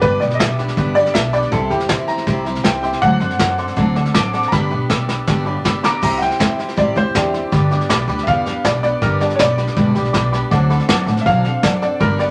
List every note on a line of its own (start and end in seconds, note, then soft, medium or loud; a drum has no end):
0.02 0.16 G1 medium
0.02 0.21 G2 medium
0.02 0.21 D3 medium
0.02 0.21 G3 medium
0.02 0.21 B3 medium
0.02 0.21 D4 medium
0.02 0.20 G4 medium
0.02 0.20 B4 loud
0.02 0.14 D5 medium
0.02 0.14 G5 medium
0.02 0.14 B5 loud
0.02 kick loud
0.02 snare soft
0.20 0.35 B1 medium
0.20 0.38 G3 medium
0.20 0.39 B3 medium
0.20 0.40 D4 medium
0.20 0.40 G4 soft
0.20 0.39 D5 medium
0.20 0.33 D5 medium
0.20 0.32 G5 medium
0.20 snare soft
0.30 snare soft
0.35 0.37 D#5 medium
0.39 0.68 B1 medium
0.39 0.58 G3 medium
0.39 0.59 B3 medium
0.39 0.58 D4 medium
0.39 0.57 G4 medium
0.39 0.51 D5 medium
0.39 0.94 E5 loud
0.39 0.51 G5 medium
0.39 kick medium
0.39 snare loud
0.39 hi-hat pedal medium
0.58 0.76 G3 soft
0.58 0.77 B3 soft
0.58 0.77 D4 medium
0.58 0.77 G4 soft
0.58 0.70 D5 medium
0.58 0.70 G5 medium
0.58 0.70 B5 medium
0.58 snare soft
0.68 snare soft
0.77 1.05 G1 medium
0.77 0.96 G2 medium
0.77 0.96 D3 medium
0.77 0.96 G3 medium
0.77 0.96 B3 medium
0.77 0.95 D4 medium
0.77 0.95 G4 medium
0.77 0.89 D5 medium
0.77 0.89 G5 medium
0.77 0.89 B5 medium
0.77 kick loud
0.77 snare soft
0.95 1.13 G3 soft
0.95 1.14 B3 soft
0.95 1.14 D4 medium
0.95 1.15 G4 soft
0.95 1.14 D5 loud
0.95 1.07 D5 medium
0.95 1.07 G5 medium
0.95 1.07 B5 medium
0.95 snare soft
1.05 snare soft
1.14 1.43 B1 medium
1.14 1.33 G3 medium
1.14 1.33 B3 medium
1.14 1.32 D4 medium
1.14 1.31 G4 medium
1.14 1.26 D5 medium
1.14 1.32 E5 loud
1.14 1.26 G5 medium
1.14 1.26 A5 loud
1.14 kick medium
1.14 snare loud
1.14 hi-hat pedal medium
1.32 1.51 G3 soft
1.32 1.52 B3 medium
1.32 1.52 D4 medium
1.32 1.52 G4 medium
1.32 1.51 D5 loud
1.32 1.45 D5 loud
1.32 1.45 G5 loud
1.32 1.44 B5 loud
1.32 snare soft
1.42 snare soft
1.52 1.66 C2 loud
1.52 1.71 C3 medium
1.52 1.71 G3 medium
1.52 1.71 C4 medium
1.52 1.70 E4 medium
1.52 1.69 G4 medium
1.52 1.70 A4 medium
1.52 1.63 E5 medium
1.52 1.63 G5 medium
1.52 1.63 C6 loud
1.52 kick loud
1.52 snare soft
1.70 1.85 E2 loud
1.70 1.88 C4 soft
1.70 1.88 E4 medium
1.70 1.89 G4 medium
1.70 1.89 G4 loud
1.70 1.82 E5 medium
1.70 1.82 G5 medium
1.70 1.82 B5 medium
1.70 snare soft
1.80 snare soft
1.88 2.18 E2 medium
1.88 2.08 G3 medium
1.88 2.08 C4 medium
1.88 2.08 E4 medium
1.88 2.06 G4 medium
1.88 2.01 E5 medium
1.88 2.01 G5 medium
1.88 2.01 C6 medium
1.88 kick medium
1.88 snare loud
1.88 hi-hat pedal loud
2.08 2.26 C4 soft
2.08 2.26 E4 soft
2.08 2.27 G4 medium
2.08 2.20 E5 medium
2.08 2.20 G5 medium
2.08 2.63 A#5 medium
2.08 2.20 C6 medium
2.08 snare soft
2.18 snare soft
2.27 2.55 C2 loud
2.27 2.46 C3 medium
2.27 2.46 G3 medium
2.27 2.46 C4 medium
2.27 2.45 E4 medium
2.27 2.44 G4 medium
2.27 2.38 E5 medium
2.27 2.38 G5 medium
2.27 2.38 C6 medium
2.27 kick loud
2.27 snare soft
2.45 2.63 C4 soft
2.45 2.64 E4 medium
2.45 2.64 G4 medium
2.45 2.57 E5 medium
2.45 2.57 G5 medium
2.45 2.57 C6 medium
2.45 snare soft
2.55 snare soft
2.63 2.93 C2 medium
2.63 2.83 G3 medium
2.63 2.83 C4 medium
2.63 2.82 E4 medium
2.63 2.81 G4 medium
2.63 2.76 E5 medium
2.63 2.81 G5 medium
2.63 2.76 G5 medium
2.63 2.76 C6 loud
2.63 kick medium
2.63 snare loud
2.63 hi-hat pedal medium
2.82 3.01 C4 medium
2.82 3.02 E4 medium
2.82 3.01 G4 medium
2.82 2.95 E5 loud
2.82 3.01 G5 medium
2.82 2.95 G5 medium
2.82 2.95 C6 loud
2.82 snare soft
2.93 snare soft
3.01 3.16 D2 loud
3.01 3.21 D3 medium
3.01 3.21 F#3 medium
3.01 3.21 C4 medium
3.01 3.20 D4 medium
3.01 3.19 A4 medium
3.01 3.13 D5 medium
3.01 3.13 F#5 medium
3.01 3.75 F#5 loud
3.01 3.13 A5 medium
3.01 kick loud
3.01 snare soft
3.20 3.35 F#2 loud
3.20 3.38 C4 soft
3.20 3.39 D4 medium
3.20 3.39 A4 medium
3.20 3.32 D5 medium
3.20 3.32 F#5 medium
3.20 3.32 C6 medium
3.20 snare soft
3.30 snare soft
3.39 3.68 F#2 medium
3.39 3.58 F#3 medium
3.39 3.58 C4 medium
3.39 3.58 D4 medium
3.39 3.56 A4 medium
3.39 3.51 D5 medium
3.39 3.51 F#5 medium
3.39 3.51 C6 medium
3.39 kick medium
3.39 snare loud
3.39 hi-hat pedal medium
3.58 3.76 C4 soft
3.58 3.76 D4 medium
3.58 3.77 A4 medium
3.58 3.70 D5 medium
3.58 3.70 F#5 medium
3.58 3.70 C6 loud
3.58 snare soft
3.68 snare soft
3.76 4.05 D2 loud
3.76 3.95 D3 medium
3.76 3.96 F#3 medium
3.76 3.96 C4 medium
3.76 3.96 D4 loud
3.76 3.95 A4 loud
3.76 3.88 D5 medium
3.76 3.88 F#5 medium
3.76 3.88 A5 medium
3.76 kick loud
3.76 snare soft
3.96 4.14 C4 medium
3.96 4.15 D4 medium
3.96 4.15 A4 medium
3.96 4.07 D5 medium
3.96 4.07 F#5 medium
3.96 4.07 A5 loud
3.96 snare soft
4.05 snare soft
4.14 4.43 A1 medium
4.14 4.33 F#3 medium
4.14 4.34 C4 medium
4.14 4.33 D4 medium
4.14 4.32 A4 medium
4.14 4.26 D5 medium
4.14 4.26 F#5 medium
4.14 4.26 A5 loud
4.14 4.51 D6 medium
4.14 kick medium
4.14 snare loud
4.14 hi-hat pedal medium
4.33 4.53 C4 soft
4.33 4.53 D4 medium
4.33 4.52 A4 medium
4.33 4.45 D5 loud
4.33 4.45 F#5 medium
4.33 4.45 A5 loud
4.33 snare soft
4.43 snare soft
4.48 4.63 D5 medium
4.48 4.51 A#5 medium
4.52 4.66 G1 medium
4.52 4.71 G2 medium
4.52 4.71 D3 medium
4.52 4.71 G3 medium
4.52 4.70 B3 medium
4.52 4.70 D4 medium
4.52 4.69 G4 medium
4.52 4.63 G5 medium
4.52 4.63 B5 medium
4.52 4.89 B5 loud
4.52 kick loud
4.52 snare medium
4.70 4.85 B1 medium
4.70 4.88 G3 soft
4.70 4.89 B3 medium
4.70 4.90 D4 medium
4.70 4.89 G4 medium
4.70 4.82 D5 medium
4.70 4.82 G5 medium
4.70 4.82 B5 medium
4.90 5.18 B1 medium
4.90 5.08 G3 medium
4.90 5.09 B3 medium
4.90 5.08 D4 medium
4.90 5.07 G4 medium
4.90 5.01 D5 medium
4.90 5.01 G5 medium
4.90 5.01 B5 medium
4.90 5.08 E6 medium
4.90 kick loud
4.90 snare medium
4.90 hi-hat pedal medium
5.08 5.27 G3 soft
5.08 5.27 B3 soft
5.08 5.27 D4 soft
5.08 5.27 G4 medium
5.08 5.20 D5 medium
5.08 5.20 G5 medium
5.08 5.20 B5 medium
5.08 snare medium
5.27 5.56 G1 loud
5.27 5.46 G2 medium
5.27 5.46 D3 medium
5.27 5.46 G3 medium
5.27 5.45 B3 medium
5.27 5.45 D4 medium
5.27 5.44 G4 loud
5.27 5.39 D5 medium
5.27 5.39 G5 medium
5.27 5.39 A5 medium
5.27 kick loud
5.27 snare medium
5.45 5.63 G3 medium
5.45 5.64 B3 medium
5.45 5.65 D4 medium
5.45 5.64 G4 medium
5.45 5.57 D5 medium
5.45 5.57 G5 medium
5.45 5.57 B5 loud
5.64 5.93 G1 medium
5.64 5.83 G3 medium
5.64 5.84 B3 medium
5.64 5.83 D4 medium
5.64 5.82 G4 medium
5.64 5.76 D5 medium
5.64 5.76 G5 medium
5.64 5.76 B5 loud
5.64 5.83 E6 medium
5.64 kick loud
5.64 snare loud
5.64 hi-hat pedal medium
5.83 6.01 G3 soft
5.83 6.02 B3 medium
5.83 6.02 D4 soft
5.83 6.02 G4 medium
5.83 5.95 D5 loud
5.83 5.95 G5 medium
5.83 6.01 A#5 medium
5.83 5.94 B5 loud
5.83 6.02 D6 loud
5.83 snare medium
6.02 6.29 C2 medium
6.02 6.21 C3 medium
6.02 6.21 G3 medium
6.02 6.21 C4 medium
6.02 6.20 E4 medium
6.02 6.19 G4 medium
6.02 6.13 E5 medium
6.02 6.13 G5 medium
6.02 6.21 A#5 loud
6.02 6.13 C6 loud
6.02 kick loud
6.02 snare soft
6.02 crash loud
6.18 6.38 C4 soft
6.18 6.39 E4 medium
6.18 6.39 G4 medium
6.18 6.32 E5 medium
6.18 6.21 F#5 medium
6.18 6.33 G5 medium
6.18 6.33 C6 medium
6.18 snare soft
6.22 6.76 G5 medium
6.31 snare soft
6.39 6.66 E2 medium
6.39 6.58 G3 medium
6.39 6.58 C4 medium
6.39 6.59 E4 medium
6.39 6.57 G4 medium
6.39 6.51 E5 medium
6.39 6.51 G5 medium
6.39 6.51 C6 loud
6.39 kick medium
6.39 snare loud
6.39 hi-hat pedal medium
6.59 6.76 C4 soft
6.59 6.76 E4 medium
6.59 6.77 G4 medium
6.59 6.70 E5 medium
6.59 6.70 G5 medium
6.59 6.70 C6 medium
6.59 snare soft
6.68 snare soft
6.77 6.90 A1 medium
6.77 6.96 C3 medium
6.77 6.96 G3 medium
6.77 6.96 C4 medium
6.77 6.95 E4 medium
6.77 6.94 G4 medium
6.77 6.96 D5 loud
6.77 6.89 E5 medium
6.77 6.89 G5 medium
6.77 6.89 C6 medium
6.77 kick loud
6.77 snare soft
6.95 7.09 E2 loud
6.95 7.14 C4 soft
6.95 7.14 E4 medium
6.95 7.14 G4 medium
6.95 7.15 C5 medium
6.95 7.07 E5 medium
6.95 7.07 G5 medium
6.95 7.07 C6 medium
6.95 snare soft
7.14 7.41 E2 loud
7.14 7.33 G3 medium
7.14 7.34 C4 medium
7.14 7.86 D4 medium
7.14 7.33 E4 medium
7.14 7.88 G4 medium
7.14 7.31 G4 medium
7.14 7.26 E5 medium
7.14 7.26 G5 medium
7.14 7.26 C6 loud
7.14 kick medium
7.14 snare loud
7.14 hi-hat pedal medium
7.33 7.53 C4 soft
7.33 7.52 E4 medium
7.33 7.52 G4 soft
7.33 7.45 E5 medium
7.33 7.45 G5 medium
7.33 7.45 C6 medium
7.33 snare soft
7.52 7.78 G1 loud
7.52 7.71 G2 medium
7.52 7.71 D3 medium
7.52 7.71 G3 medium
7.52 7.71 B3 medium
7.52 7.70 D4 medium
7.52 7.70 G4 medium
7.52 7.64 D5 loud
7.52 7.64 G5 medium
7.52 7.63 B5 loud
7.52 kick loud
7.52 snare soft
7.71 7.88 G3 soft
7.71 7.89 B3 medium
7.71 7.89 D4 medium
7.71 7.90 G4 medium
7.71 7.82 D5 medium
7.71 7.82 G5 medium
7.71 7.82 D6 loud
7.71 snare soft
7.81 snare soft
7.89 8.03 B1 medium
7.89 8.08 G3 medium
7.89 8.08 B3 medium
7.89 8.08 D4 medium
7.89 8.07 G4 medium
7.89 8.01 D5 loud
7.89 8.01 G5 loud
7.89 8.01 B5 loud
7.89 kick medium
7.89 snare loud
7.89 hi-hat pedal medium
8.08 8.21 D2 medium
8.08 8.26 G3 medium
8.08 8.27 B3 medium
8.08 8.27 D4 medium
8.08 8.27 G4 medium
8.08 8.20 D5 medium
8.08 8.20 G5 medium
8.08 8.20 B5 loud
8.08 snare soft
8.18 snare soft
8.23 8.53 E2 medium
8.23 8.46 G2 medium
8.23 8.38 D5 medium
8.23 8.26 E5 medium
8.23 8.38 G5 medium
8.23 8.38 B5 medium
8.23 kick loud
8.23 snare soft
8.27 8.46 D3 medium
8.27 8.46 G3 medium
8.27 8.46 B3 medium
8.27 8.45 D4 medium
8.27 8.44 G4 medium
8.27 8.64 F5 loud
8.45 8.63 G3 soft
8.45 8.64 B3 soft
8.45 8.65 D4 medium
8.45 8.64 G4 medium
8.45 8.57 D5 medium
8.45 8.57 G5 medium
8.45 8.57 B5 medium
8.45 snare soft
8.64 8.90 B1 medium
8.64 8.83 G3 medium
8.64 8.83 B3 medium
8.64 8.83 D4 medium
8.64 8.82 G4 medium
8.64 8.76 D5 medium
8.64 8.82 D5 medium
8.64 8.76 G5 medium
8.64 8.76 B5 loud
8.64 kick medium
8.64 snare loud
8.64 hi-hat pedal medium
8.83 9.01 G3 soft
8.83 9.01 B3 soft
8.83 9.02 D4 medium
8.83 9.02 G4 medium
8.83 9.01 D5 loud
8.83 8.94 D5 medium
8.83 8.94 G5 medium
8.83 8.94 B5 medium
8.83 snare soft
9.02 9.28 G1 loud
9.02 9.20 G2 medium
9.02 9.21 D3 medium
9.02 9.21 G3 medium
9.02 9.21 B3 medium
9.02 9.20 D4 medium
9.02 9.20 G4 medium
9.02 9.20 A#4 medium
9.02 9.13 D5 loud
9.02 9.13 G5 medium
9.02 9.13 D6 loud
9.02 kick loud
9.02 snare soft
9.20 9.38 G3 soft
9.20 9.39 B3 soft
9.20 9.39 D4 medium
9.20 9.39 G4 medium
9.20 9.32 D5 medium
9.20 9.38 D5 medium
9.20 9.32 G5 medium
9.20 9.32 A5 medium
9.20 snare soft
9.30 snare soft
9.36 9.65 B1 loud
9.36 9.58 G3 medium
9.36 9.38 C#5 medium
9.36 9.51 G5 medium
9.36 9.51 B5 loud
9.36 kick medium
9.36 snare loud
9.36 hi-hat pedal medium
9.40 9.58 B3 medium
9.40 9.58 D4 medium
9.40 9.57 G4 medium
9.40 10.48 D5 loud
9.40 9.51 D5 loud
9.58 9.76 G3 soft
9.58 9.76 B3 soft
9.58 9.77 D4 medium
9.58 9.77 G4 medium
9.58 9.69 D5 medium
9.58 9.69 G5 medium
9.58 9.69 B5 medium
9.58 snare soft
9.67 snare soft
9.76 9.90 E1 loud
9.76 9.95 G2 medium
9.76 9.96 D3 medium
9.76 9.96 G3 medium
9.76 9.95 B3 medium
9.76 9.95 D4 medium
9.76 9.94 G4 medium
9.76 9.88 D5 medium
9.76 9.88 G5 medium
9.76 9.88 B5 medium
9.76 kick loud
9.76 snare soft
9.95 10.08 B1 medium
9.95 10.13 G3 soft
9.95 10.13 B3 medium
9.95 10.14 D4 medium
9.95 10.14 G4 medium
9.95 10.06 D5 medium
9.95 10.06 G5 medium
9.95 10.06 B5 loud
9.95 snare soft
10.05 snare soft
10.13 10.40 B1 loud
10.13 10.33 G3 medium
10.13 10.33 B3 medium
10.13 10.33 D4 medium
10.13 10.32 G4 medium
10.13 10.25 D5 loud
10.13 10.25 G5 loud
10.13 10.25 B5 loud
10.13 kick medium
10.13 snare loud
10.13 hi-hat pedal medium
10.32 10.52 G3 medium
10.32 10.52 B3 medium
10.32 10.52 D4 medium
10.32 10.52 G4 medium
10.32 10.44 D5 medium
10.32 10.44 G5 medium
10.32 10.44 B5 loud
10.32 snare soft
10.51 10.77 D2 loud
10.51 10.70 D3 medium
10.51 10.70 F#3 medium
10.51 10.70 C4 medium
10.51 10.70 D4 medium
10.51 10.69 A4 loud
10.51 10.63 D5 loud
10.51 10.62 F#5 loud
10.51 10.62 A5 loud
10.51 kick loud
10.51 snare soft
10.70 10.88 C4 medium
10.70 10.89 D4 medium
10.70 10.89 A4 medium
10.70 10.81 D5 medium
10.70 10.81 F#5 medium
10.70 10.81 B5 loud
10.70 snare soft
10.80 snare soft
10.88 11.02 F#2 medium
10.88 11.07 F#3 medium
10.88 11.08 C4 medium
10.88 11.08 D4 medium
10.88 11.06 A4 medium
10.88 11.00 D5 loud
10.88 11.00 F#5 loud
10.88 11.00 A5 loud
10.88 kick medium
10.88 snare loud
10.88 hi-hat pedal medium
11.06 11.20 A2 loud
11.06 11.26 C4 soft
11.06 11.26 D4 medium
11.06 11.26 A4 medium
11.06 11.19 D5 medium
11.06 11.19 F#5 medium
11.06 11.19 A5 loud
11.06 snare soft
11.17 snare soft
11.21 11.24 E5 medium
11.26 11.52 B2 loud
11.26 11.45 D3 medium
11.26 11.45 F#3 medium
11.26 11.45 C4 medium
11.26 11.45 D4 medium
11.26 11.43 A4 medium
11.26 11.37 D5 medium
11.26 11.62 F5 loud
11.26 11.37 F#5 medium
11.26 11.37 A5 medium
11.26 kick loud
11.26 snare soft
11.44 11.63 C4 soft
11.44 11.63 D4 medium
11.44 11.63 A4 medium
11.44 11.56 D5 medium
11.44 11.56 F#5 medium
11.44 11.56 A5 medium
11.44 snare soft
11.63 11.89 F#2 medium
11.63 11.82 F#3 medium
11.63 11.82 C4 medium
11.63 11.82 D4 medium
11.63 11.81 A4 medium
11.63 11.81 D5 medium
11.63 11.75 D5 medium
11.63 11.75 F#5 medium
11.63 11.75 A5 loud
11.63 kick loud
11.63 snare loud
11.63 hi-hat pedal medium
11.82 12.00 C4 soft
11.82 12.00 D4 medium
11.82 12.01 A4 medium
11.82 11.93 D5 medium
11.82 12.00 D5 medium
11.82 11.93 F#5 medium
11.82 11.93 A5 medium
11.82 snare soft
12.00 12.27 G1 loud
12.00 12.19 G2 medium
12.00 12.19 D3 medium
12.00 12.19 G3 medium
12.00 12.18 B3 medium
12.00 12.18 D4 medium
12.00 12.17 G4 medium
12.00 12.19 A#4 loud
12.00 12.12 D5 medium
12.00 12.12 G5 medium
12.00 12.12 B5 loud
12.00 kick loud
12.00 snare soft
12.18 12.30 G3 soft
12.18 12.30 B3 medium
12.18 12.30 D4 medium
12.18 12.30 G4 medium
12.18 12.30 D5 medium
12.18 12.30 G5 medium
12.18 12.30 B5 medium
12.18 snare soft